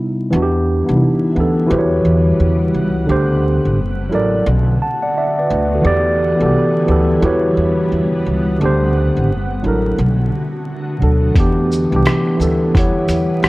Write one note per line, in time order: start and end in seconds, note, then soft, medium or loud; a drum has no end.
0.00 0.28 C3 medium
0.00 0.29 G3 medium
0.00 0.29 B3 medium
0.00 0.34 D#4 medium
0.00 0.34 E4 loud
0.31 0.81 E2 loud
0.31 1.69 D3 medium
0.31 0.84 E3 loud
0.31 3.05 G3 medium
0.31 3.05 B3 medium
0.31 0.85 B3 loud
0.31 0.86 D4 loud
0.31 1.69 E4 medium
0.36 0.42 F#4 medium
0.43 0.90 G4 loud
0.85 1.00 C2 medium
0.85 1.32 E3 medium
0.85 1.33 B3 medium
0.85 1.34 D4 medium
0.90 0.94 D#4 medium
0.97 1.38 E4 medium
1.35 1.66 D2 medium
1.35 1.65 E3 medium
1.35 1.71 B3 medium
1.35 1.72 D4 medium
1.40 1.72 A4 loud
1.67 2.00 E2 loud
1.67 3.06 C#3 medium
1.67 3.01 E3 medium
1.67 3.01 E4 medium
1.67 3.02 F#4 medium
1.67 3.02 G4 medium
1.67 3.06 F#5 medium
1.71 3.03 B4 medium
1.71 1.79 C5 medium
1.79 3.07 C#5 medium
2.05 2.35 E2 medium
2.40 2.69 E2 medium
2.74 3.04 C#2 medium
3.06 3.57 D2 medium
3.06 3.76 D3 loud
3.06 4.44 D3 medium
3.06 3.77 D4 medium
3.06 3.78 G4 medium
3.12 3.79 C5 loud
3.65 3.78 A1 medium
3.77 4.07 F#1 loud
3.77 5.82 F#4 medium
4.09 4.42 A1 medium
4.09 4.45 F#3 medium
4.09 4.46 E4 medium
4.09 4.46 A4 medium
4.14 4.47 A#4 medium
4.14 4.48 D5 loud
4.46 4.76 B1 loud
4.46 7.19 D3 medium
4.46 5.82 A3 medium
4.46 7.19 B3 medium
4.82 5.01 F#5 medium
4.82 5.02 A5 medium
5.02 5.15 D5 medium
5.02 5.14 F#5 medium
5.17 5.37 D5 medium
5.17 5.37 E5 medium
5.38 5.49 B4 medium
5.38 5.50 D5 medium
5.50 5.80 D2 medium
5.50 5.70 B4 medium
5.75 6.06 F#4 soft
5.75 6.06 A4 medium
5.82 6.33 E2 loud
5.82 6.35 E3 loud
5.82 8.57 G3 medium
5.82 6.36 B3 medium
5.82 7.20 E4 medium
5.82 6.37 G4 loud
5.87 6.38 D5 loud
6.36 6.83 E3 medium
6.36 6.84 B3 medium
6.36 6.45 F#4 medium
6.40 6.51 C2 medium
6.40 6.86 A4 medium
6.46 6.88 G4 medium
6.86 7.18 D2 medium
6.86 7.20 E3 loud
6.86 7.22 B3 medium
6.86 7.23 G4 medium
6.92 7.24 A4 loud
7.21 7.52 E2 loud
7.21 8.58 C#3 medium
7.21 8.54 E3 medium
7.21 8.58 B3 medium
7.21 8.54 E4 medium
7.21 8.55 F#4 medium
7.21 8.55 G4 medium
7.21 8.58 F#5 medium
7.25 8.56 B4 medium
7.25 8.56 C#5 loud
7.57 7.87 E2 medium
7.92 8.21 E2 medium
8.26 8.56 C#2 medium
8.60 9.09 D2 medium
8.60 12.70 D3 medium
8.60 9.29 D3 loud
8.60 9.30 D4 loud
8.60 9.31 G4 loud
8.65 9.31 C5 loud
9.17 9.29 A1 medium
9.29 9.59 F#1 medium
9.29 11.34 F#4 medium
9.62 9.93 A1 medium
9.62 9.97 F#3 medium
9.62 9.98 D4 medium
9.62 9.99 E4 medium
9.67 9.99 A4 medium
9.67 10.00 A#4 medium
9.98 10.28 B1 loud
9.98 11.34 A3 medium
9.98 11.34 B3 medium
10.98 11.31 D2 medium
10.98 11.33 B2 medium
10.98 11.34 F#3 medium
10.98 11.35 D4 medium
11.04 11.35 A4 medium
11.34 11.84 E2 loud
11.34 11.88 E3 loud
11.34 13.49 G3 medium
11.34 13.49 B3 medium
11.34 11.89 B3 loud
11.34 11.90 D4 loud
11.34 12.72 E4 medium
11.34 kick loud
11.34 closed hi-hat medium
11.40 11.90 G4 loud
11.72 shaker soft
11.91 12.03 C2 medium
11.91 12.36 E3 medium
11.91 12.37 B3 medium
11.91 12.38 D4 medium
11.96 12.39 G4 medium
12.06 cross-stick loud
12.06 closed hi-hat medium
12.37 12.69 D2 medium
12.37 12.72 E3 medium
12.37 12.73 B3 medium
12.37 12.74 D4 medium
12.37 shaker soft
12.42 12.75 A4 medium
12.73 13.04 E2 loud
12.73 13.49 C#3 medium
12.73 13.49 E3 medium
12.73 13.49 E4 medium
12.73 13.49 G4 medium
12.73 13.44 F#5 medium
12.73 kick medium
12.73 closed hi-hat medium
12.78 13.49 B4 medium
12.78 13.45 C#5 medium
13.08 13.38 E2 medium
13.08 closed hi-hat soft
13.08 shaker soft
13.43 13.49 E2 medium
13.43 13.49 F#5 medium
13.43 cross-stick loud
13.43 closed hi-hat medium